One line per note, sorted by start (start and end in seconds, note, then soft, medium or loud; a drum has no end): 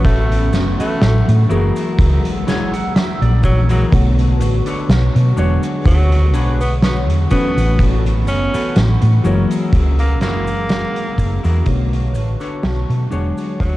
0.00 0.54 A1 medium
0.00 1.41 E3 medium
0.00 1.41 F#3 medium
0.00 1.42 A3 medium
0.00 1.42 B3 medium
0.00 0.36 C#4 medium
0.00 1.42 C#4 medium
0.00 0.36 F#4 medium
0.00 0.36 A4 medium
0.00 1.48 A4 medium
0.00 0.37 B4 medium
0.00 1.48 F#5 medium
0.00 1.48 B5 medium
0.00 1.47 C#6 medium
0.05 0.64 A3 loud
0.05 kick loud
0.05 closed hi-hat medium
0.05 cabasa soft
0.32 closed hi-hat medium
0.53 0.73 F#1 medium
0.53 muted clean electric guitar stroke medium
0.53 snare medium
0.53 closed hi-hat medium
0.53 cabasa medium
0.79 1.37 A3 loud
0.79 1.01 C#4 medium
0.79 1.02 F#4 medium
0.79 1.02 A4 medium
0.79 1.02 B4 medium
0.79 muted fingered electric bass stroke soft
0.79 closed hi-hat medium
0.79 cabasa medium
1.01 1.21 A1 medium
1.01 snare loud
1.01 closed hi-hat medium
1.01 cabasa soft
1.28 1.44 A2 loud
1.28 closed hi-hat medium
1.49 1.69 F#1 medium
1.49 3.83 E3 medium
1.49 3.83 F#3 medium
1.49 3.84 G#3 medium
1.49 3.84 A#3 medium
1.49 2.29 E4 medium
1.49 2.29 F#4 medium
1.49 3.90 G#4 medium
1.49 2.30 G#4 medium
1.49 2.30 A#4 loud
1.49 3.90 F#5 medium
1.49 3.90 A#5 medium
1.49 3.90 E6 medium
1.49 cabasa medium
1.76 closed hi-hat medium
1.76 cabasa medium
1.99 2.18 C#2 medium
1.99 kick loud
1.99 closed hi-hat loud
1.99 cabasa soft
2.25 closed hi-hat medium
2.47 2.73 E4 medium
2.47 2.73 F#4 medium
2.47 2.74 G#4 medium
2.47 2.73 C#5 loud
2.47 2.72 G#5 medium
2.47 snare medium
2.47 closed hi-hat medium
2.47 cabasa medium
2.73 2.94 F#5 medium
2.73 closed hi-hat medium
2.73 cabasa medium
2.95 3.20 E5 medium
2.95 snare loud
2.95 closed hi-hat medium
2.95 cabasa soft
3.21 3.82 A#1 medium
3.21 3.42 D5 medium
3.21 closed hi-hat medium
3.43 3.61 F#3 medium
3.43 3.71 C#5 medium
3.43 muted clean electric guitar stroke medium
3.43 kick medium
3.43 closed hi-hat medium
3.43 cabasa medium
3.69 3.84 F#3 medium
3.69 3.92 E4 medium
3.69 3.92 F#4 medium
3.69 3.92 G#4 medium
3.69 3.93 A#4 medium
3.69 closed hi-hat medium
3.69 cabasa medium
3.91 4.40 B1 loud
3.91 5.28 D3 medium
3.91 5.28 A3 medium
3.91 5.29 B3 medium
3.91 5.30 F#4 medium
3.91 5.36 B4 medium
3.91 5.29 C#5 medium
3.91 5.36 A5 medium
3.91 9.21 C#6 medium
3.91 kick loud
3.91 closed hi-hat medium
3.91 cabasa soft
4.19 closed hi-hat medium
4.40 4.60 A1 loud
4.40 muted clean electric guitar stroke medium
4.40 closed hi-hat medium
4.40 cabasa medium
4.66 4.89 D4 medium
4.66 4.89 A4 medium
4.66 4.89 B4 medium
4.66 4.90 C#5 medium
4.66 closed hi-hat soft
4.66 cabasa medium
4.89 5.08 B1 medium
4.89 snare loud
4.89 closed hi-hat medium
4.89 cabasa soft
5.16 5.32 B2 medium
5.16 closed hi-hat medium
5.36 5.57 E1 medium
5.36 7.22 D3 medium
5.36 7.22 F#3 medium
5.36 7.22 G#3 medium
5.36 7.23 B3 medium
5.36 6.16 D4 medium
5.36 6.17 F#4 medium
5.36 7.29 G#4 medium
5.36 6.17 G#4 medium
5.36 6.17 C#5 loud
5.36 7.23 C#5 medium
5.36 7.29 F#5 medium
5.36 cabasa medium
5.63 closed hi-hat medium
5.63 cabasa medium
5.86 6.35 D2 medium
5.86 6.45 F#3 medium
5.86 kick loud
5.86 closed hi-hat loud
5.86 cabasa soft
6.12 closed hi-hat medium
6.34 7.09 B1 loud
6.34 6.60 D4 medium
6.34 6.61 F#4 medium
6.34 6.61 G#4 medium
6.34 6.61 B4 medium
6.34 closed hi-hat medium
6.34 cabasa medium
6.61 6.75 B3 medium
6.61 closed hi-hat medium
6.61 cabasa medium
6.82 7.00 B3 medium
6.82 snare loud
6.82 closed hi-hat loud
6.82 cabasa soft
7.09 7.25 E2 medium
7.09 closed hi-hat medium
7.30 9.15 E3 medium
7.30 9.15 F#3 medium
7.30 9.16 A3 medium
7.30 7.90 B3 loud
7.30 9.16 B3 medium
7.30 8.10 C#4 medium
7.30 9.16 C#4 medium
7.30 8.10 F#4 medium
7.30 9.23 A4 medium
7.30 8.11 A4 medium
7.30 8.11 B4 loud
7.30 11.63 F#5 medium
7.30 9.23 B5 medium
7.30 kick medium
7.30 closed hi-hat medium
7.30 cabasa medium
7.57 8.28 A1 medium
7.57 closed hi-hat medium
7.57 cabasa medium
7.79 kick loud
7.79 closed hi-hat medium
7.79 cabasa soft
8.06 closed hi-hat medium
8.27 8.47 F#1 loud
8.27 8.87 C#4 loud
8.27 muted clean electric guitar stroke medium
8.27 closed hi-hat medium
8.27 cabasa medium
8.54 8.76 C#4 medium
8.54 8.76 F#4 medium
8.54 8.77 A4 medium
8.54 8.77 B4 medium
8.54 muted fingered electric bass stroke soft
8.54 closed hi-hat medium
8.54 cabasa medium
8.76 8.95 A1 medium
8.76 snare loud
8.76 closed hi-hat medium
8.76 cabasa soft
9.02 9.19 A2 loud
9.02 closed hi-hat medium
9.23 9.44 F#1 medium
9.23 11.57 E3 medium
9.23 11.57 F#3 medium
9.23 11.58 G#3 medium
9.23 11.58 A#3 medium
9.23 11.59 C#4 medium
9.23 10.03 E4 medium
9.23 10.04 F#4 medium
9.23 11.64 G#4 medium
9.23 10.04 G#4 medium
9.23 10.04 A#4 medium
9.23 11.64 A#5 medium
9.23 11.64 E6 medium
9.23 cabasa medium
9.51 closed hi-hat medium
9.51 cabasa medium
9.73 10.22 C#2 medium
9.73 kick loud
9.73 closed hi-hat medium
9.73 cabasa soft
9.99 10.17 A#3 medium
9.99 closed hi-hat medium
10.21 10.85 F#1 medium
10.21 11.58 A#3 loud
10.21 10.47 E4 medium
10.21 10.48 F#4 medium
10.21 10.48 G#4 medium
10.21 10.48 A#4 loud
10.21 snare medium
10.21 closed hi-hat medium
10.21 cabasa medium
10.47 closed hi-hat medium
10.47 cabasa soft
10.69 snare loud
10.69 closed hi-hat medium
10.69 cabasa soft
10.96 closed hi-hat medium
11.18 11.37 F#1 medium
11.18 muted clean electric guitar stroke medium
11.18 kick medium
11.18 closed hi-hat medium
11.18 cabasa medium
11.43 11.61 E2 loud
11.43 11.66 E4 medium
11.43 11.66 F#4 medium
11.43 11.67 G#4 medium
11.43 11.67 A#4 medium
11.43 closed hi-hat medium
11.43 cabasa medium
11.65 12.15 B1 loud
11.65 13.02 D3 medium
11.65 13.03 A3 medium
11.65 13.03 B3 medium
11.65 13.04 F#4 medium
11.65 13.10 B4 medium
11.65 13.03 C#5 medium
11.65 13.10 A5 medium
11.65 13.10 C#6 medium
11.65 kick loud
11.65 closed hi-hat loud
11.65 cabasa soft
11.93 closed hi-hat medium
12.14 12.34 A1 loud
12.14 muted clean electric guitar stroke medium
12.14 closed hi-hat medium
12.14 cabasa medium
12.40 12.63 D4 medium
12.40 12.63 A4 medium
12.40 12.63 B4 medium
12.40 12.64 C#5 medium
12.40 closed hi-hat medium
12.40 cabasa medium
12.63 12.83 B1 medium
12.63 snare loud
12.63 closed hi-hat loud
12.63 cabasa soft
12.90 13.06 B2 loud
12.90 closed hi-hat medium
13.10 13.31 E1 medium
13.10 13.77 D3 medium
13.10 13.77 F#3 medium
13.10 13.77 G#3 medium
13.10 13.77 B3 medium
13.10 13.77 D4 loud
13.10 13.77 F#4 medium
13.10 13.77 G#4 medium
13.10 13.77 C#5 loud
13.10 13.77 C#5 medium
13.10 13.77 F#5 medium
13.10 13.77 C#6 medium
13.10 cabasa medium
13.38 closed hi-hat medium
13.38 cabasa medium
13.60 13.77 D2 loud
13.60 13.77 F#3 medium
13.60 kick loud
13.60 closed hi-hat medium
13.60 cabasa soft